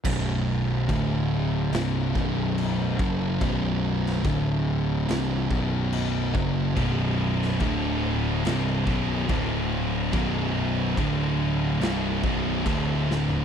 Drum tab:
CC |x---x---x---x---|x---x---x---x---|x---x---x---x---|x---x---x---x---|
SD |--------o-------|---o----o-------|---o----o-------|--------o-----o-|
FT |----------------|----------------|----------------|---------------o|
BD |o---o-----o---o-|o---o-----o---o-|o---o-----o-o---|o---o-----o-o---|